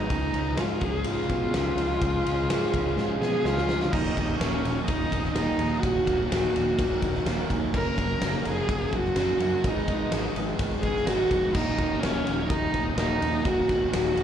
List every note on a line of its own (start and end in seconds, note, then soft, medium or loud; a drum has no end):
0.00 0.10 D#3 medium
0.00 0.10 G#3 medium
0.00 0.34 G#3 medium
0.00 0.11 B3 medium
0.00 0.60 D#4 loud
0.09 0.32 C#2 medium
0.09 0.84 C#3 medium
0.09 3.89 F3 medium
0.09 3.88 G#3 medium
0.09 0.83 G#3 medium
0.09 3.88 C#4 medium
0.09 0.82 C#4 medium
0.09 0.81 F4 medium
0.09 3.88 G#4 medium
0.09 0.80 G#4 loud
0.09 kick loud
0.09 ride medium
0.34 0.55 C#2 medium
0.34 0.82 C#4 medium
0.34 ride medium
0.57 0.79 G#2 medium
0.57 0.85 F4 medium
0.57 1.78 G#4 medium
0.57 snare loud
0.57 ride medium
0.81 1.03 C#2 medium
0.81 2.00 C#3 medium
0.81 2.01 G#3 medium
0.81 2.03 C#4 medium
0.81 2.00 F4 medium
0.81 1.99 G#4 loud
0.81 1.07 G#4 medium
0.81 kick medium
0.81 ride medium
1.04 1.27 G#2 loud
1.04 1.78 F4 medium
1.04 3.18 F4 loud
1.04 ride medium
1.29 1.51 B2 medium
1.29 2.50 G#3 medium
1.29 kick medium
1.29 ride medium
1.52 1.74 C#2 medium
1.52 2.24 C#4 medium
1.52 snare loud
1.52 ride medium
1.76 1.98 C#2 medium
1.76 2.96 F4 medium
1.76 ride medium
2.01 2.23 C#2 medium
2.01 2.72 C#3 medium
2.01 2.72 G#3 medium
2.01 2.73 C#4 medium
2.01 2.71 F4 loud
2.01 2.71 G#4 medium
2.01 kick loud
2.01 ride medium
2.25 2.46 C#2 medium
2.25 2.72 C#4 medium
2.25 ride medium
2.50 2.71 G#2 medium
2.50 3.69 G#4 medium
2.50 snare loud
2.50 ride loud
2.63 snare soft
2.72 2.95 C#2 loud
2.72 3.92 C#3 medium
2.72 3.92 G#3 medium
2.72 3.92 C#4 medium
2.72 3.91 F4 medium
2.72 3.91 G#4 medium
2.72 kick medium
2.72 ride medium
2.96 3.18 G#2 loud
2.96 3.67 F4 medium
2.96 snare medium
3.21 3.42 B2 medium
3.21 3.91 G#3 medium
3.21 3.47 G#4 loud
3.21 3.45 G#5 medium
3.21 snare medium
3.44 3.66 C#2 medium
3.44 3.93 C#4 medium
3.44 3.94 F4 loud
3.44 3.92 F5 medium
3.44 snare medium
3.57 snare medium
3.68 3.90 D2 medium
3.68 3.92 F4 medium
3.68 snare loud
3.81 snare medium
3.92 4.08 D#1 loud
3.92 4.16 D#2 medium
3.92 4.16 A#2 medium
3.92 4.18 D#3 loud
3.92 7.71 F#3 medium
3.92 7.71 C#4 medium
3.92 7.71 D#4 medium
3.92 4.40 D#4 loud
3.92 7.71 A#4 medium
3.92 4.40 D#5 medium
3.92 kick loud
3.92 crash loud
4.16 4.32 D#1 medium
4.16 4.39 D#2 medium
4.16 4.39 A#2 medium
4.16 4.40 D#3 medium
4.16 kick medium
4.16 ride medium
4.37 4.55 D#1 medium
4.37 4.62 D#2 medium
4.37 4.62 A#2 medium
4.37 4.64 D#3 medium
4.37 4.85 C#4 medium
4.37 4.83 C#5 medium
4.37 ride loud
4.41 snare loud
4.63 4.78 D#1 medium
4.63 4.86 D#2 medium
4.63 4.87 A#2 loud
4.63 4.87 D#3 medium
4.63 ride medium
4.85 5.03 D#1 medium
4.85 5.09 D#2 medium
4.85 5.10 A#2 medium
4.85 5.10 D#3 loud
4.85 5.32 D#4 loud
4.85 5.31 D#5 medium
4.85 kick loud
4.85 ride loud
5.10 5.28 D#1 medium
5.10 5.35 D#2 medium
5.10 5.35 A#2 medium
5.10 5.36 D#3 loud
5.10 kick medium
5.10 ride medium
5.24 snare soft
5.32 5.50 D#1 medium
5.32 5.81 D#4 loud
5.32 5.81 D#5 medium
5.32 snare loud
5.32 ride medium
5.36 5.58 D#2 medium
5.36 5.59 A#2 medium
5.36 5.59 D#3 medium
5.58 5.74 D#2 medium
5.58 5.81 D#2 medium
5.58 5.82 A#2 medium
5.58 5.82 D#3 medium
5.58 ride medium
5.79 6.07 D#2 medium
5.79 6.27 F#4 medium
5.79 6.30 F#5 medium
5.79 ride loud
5.83 5.99 D#1 medium
5.83 6.08 A#2 loud
5.83 6.08 D#3 loud
5.83 kick loud
6.06 6.22 D#1 medium
6.06 6.30 D#2 medium
6.06 6.30 A#2 loud
6.06 6.31 D#3 medium
6.06 kick medium
6.06 ride medium
6.27 6.45 D#1 medium
6.27 6.54 D#2 medium
6.27 7.45 F#4 medium
6.27 7.47 F#5 medium
6.32 6.55 A#2 medium
6.32 6.55 D#3 loud
6.32 snare loud
6.32 ride loud
6.54 6.70 D#1 medium
6.54 6.77 D#2 medium
6.54 6.78 A#2 loud
6.54 6.79 D#3 loud
6.54 ride medium
6.79 6.94 D#1 medium
6.79 7.01 D#2 medium
6.79 7.02 A#2 medium
6.79 7.02 D#3 loud
6.79 kick loud
6.79 ride loud
7.02 7.18 D#1 medium
7.02 7.24 D#2 medium
7.02 7.25 A#2 medium
7.02 7.25 D#3 medium
7.02 kick medium
7.02 ride medium
7.14 snare soft
7.25 7.41 D#1 medium
7.25 7.48 D#2 medium
7.25 7.49 A#2 medium
7.25 7.49 D#3 loud
7.25 snare loud
7.25 ride medium
7.49 7.73 D#2 medium
7.49 7.65 D#2 medium
7.49 7.73 A#2 medium
7.49 7.73 D#3 medium
7.49 kick medium
7.49 ride medium
7.73 7.90 F#1 medium
7.73 7.96 F#2 loud
7.73 7.97 C#3 loud
7.73 7.97 F#3 loud
7.73 9.64 F#3 medium
7.73 9.64 A#3 medium
7.73 9.64 C#4 medium
7.73 9.64 A#4 medium
7.73 8.42 A#4 loud
7.73 8.43 A#5 medium
7.73 kick loud
7.73 crash medium
7.97 8.13 F#1 medium
7.97 8.20 F#2 medium
7.97 8.20 C#3 medium
7.97 8.21 F#3 medium
7.97 kick medium
7.97 ride medium
8.21 8.37 F#1 loud
8.21 8.42 F#2 medium
8.21 8.43 C#3 medium
8.21 8.43 F#3 medium
8.21 snare loud
8.21 ride loud
8.44 8.60 F#1 medium
8.44 8.66 F#2 medium
8.44 8.67 C#3 medium
8.44 8.67 F#3 loud
8.44 ride medium
8.48 8.98 G#4 loud
8.48 8.92 G#5 medium
8.67 8.84 F#1 medium
8.67 8.90 F#2 medium
8.67 8.91 C#3 loud
8.67 8.91 F#3 medium
8.67 kick loud
8.67 ride loud
8.91 9.09 F#1 medium
8.91 9.13 F#2 medium
8.91 9.14 C#3 medium
8.91 9.15 F#3 medium
8.91 kick medium
8.91 ride medium
8.96 9.70 F#4 loud
8.96 9.67 F#5 medium
9.05 snare soft
9.15 9.32 F#1 medium
9.15 9.38 F#2 medium
9.15 9.38 C#3 medium
9.15 9.39 F#3 medium
9.15 snare loud
9.15 ride loud
9.39 9.63 F#2 medium
9.39 9.56 F#2 medium
9.39 9.63 C#3 medium
9.39 9.63 F#3 medium
9.39 ride medium
9.63 9.80 G#1 loud
9.63 9.86 G#2 loud
9.63 9.87 D#3 loud
9.63 11.53 G#3 medium
9.63 9.87 G#3 loud
9.63 11.53 B3 medium
9.63 11.52 D#4 medium
9.63 11.54 B4 medium
9.63 10.38 D#5 medium
9.63 kick loud
9.63 ride loud
9.68 10.38 D#4 medium
9.87 10.04 G#1 medium
9.87 10.10 G#2 medium
9.87 10.10 D#3 medium
9.87 10.11 G#3 medium
9.87 kick medium
9.87 ride medium
10.11 10.28 G#1 medium
10.11 10.34 G#2 medium
10.11 10.33 D#3 medium
10.11 10.35 G#3 medium
10.11 snare loud
10.11 ride loud
10.35 10.51 G#1 medium
10.35 10.56 G#2 medium
10.35 10.57 D#3 loud
10.35 10.58 G#3 loud
10.35 ride medium
10.57 10.75 G#1 medium
10.57 10.79 G#2 medium
10.57 10.80 D#3 loud
10.57 10.80 G#3 loud
10.57 kick loud
10.57 ride loud
10.81 10.98 G#1 medium
10.81 11.04 G#2 medium
10.81 11.05 D#3 medium
10.81 11.05 G#3 medium
10.81 11.07 G#4 medium
10.81 kick medium
10.81 ride medium
10.86 11.11 G#5 medium
10.96 snare soft
11.05 11.24 G#1 medium
11.05 11.27 G#2 medium
11.05 11.28 D#3 medium
11.05 11.28 G#3 loud
11.05 11.56 F#4 loud
11.05 snare loud
11.05 ride loud
11.11 11.56 F#5 medium
11.28 11.46 F1 medium
11.28 11.53 G#2 medium
11.28 11.53 D#3 medium
11.28 11.53 G#3 medium
11.28 kick medium
11.28 ride medium
11.53 11.70 D#1 medium
11.53 11.76 D#2 medium
11.53 11.75 A#2 medium
11.53 11.77 D#3 medium
11.53 14.23 F#3 medium
11.53 14.23 C#4 medium
11.53 14.23 D#4 medium
11.53 12.01 D#4 loud
11.53 14.23 A#4 medium
11.53 12.03 D#5 medium
11.53 kick loud
11.53 crash medium
11.76 11.94 D#1 loud
11.76 12.01 D#2 medium
11.76 12.01 A#2 medium
11.76 12.02 D#3 medium
11.76 kick medium
11.76 ride medium
12.00 12.18 D#1 medium
12.00 12.25 D#2 medium
12.00 12.24 A#2 medium
12.00 12.26 D#3 loud
12.00 12.47 C#4 loud
12.00 12.49 C#5 medium
12.00 snare loud
12.00 ride loud
12.25 12.42 D#1 medium
12.25 12.47 D#2 loud
12.25 12.48 A#2 medium
12.25 12.49 D#3 loud
12.25 ride medium
12.47 12.65 D#1 medium
12.47 12.72 D#2 medium
12.47 12.72 A#2 loud
12.47 12.72 D#3 loud
12.47 12.93 D#4 loud
12.47 12.94 D#5 medium
12.47 kick loud
12.47 ride medium
12.73 12.89 D#1 medium
12.73 12.95 D#2 medium
12.73 12.95 A#2 medium
12.73 12.96 D#3 medium
12.73 kick medium
12.73 ride medium
12.96 13.13 D#1 medium
12.96 13.20 D#2 medium
12.96 13.21 A#2 medium
12.96 13.21 D#3 medium
12.96 13.47 D#4 loud
12.96 13.45 D#5 medium
12.96 snare loud
12.96 ride medium
13.21 13.42 D#2 medium
13.21 13.37 D#2 medium
13.21 13.43 A#2 medium
13.21 13.44 D#3 medium
13.21 ride medium
13.44 13.61 D#1 loud
13.44 13.67 D#2 loud
13.44 13.67 A#2 loud
13.44 13.68 D#3 loud
13.44 13.90 F#4 loud
13.44 13.90 F#5 medium
13.44 kick loud
13.44 ride medium
13.68 13.85 D#1 loud
13.68 13.91 D#2 medium
13.68 13.92 A#2 medium
13.68 13.92 D#3 medium
13.68 kick medium
13.68 ride medium
13.91 14.09 D#1 medium
13.91 14.14 D#2 medium
13.91 14.15 A#2 medium
13.91 14.16 D#3 medium
13.91 14.23 F#4 loud
13.91 14.23 F#5 medium
13.91 snare loud
13.91 ride loud
14.15 14.23 D#1 medium
14.15 14.23 D#2 medium
14.15 14.23 A#2 loud
14.15 14.23 D#3 loud
14.15 ride medium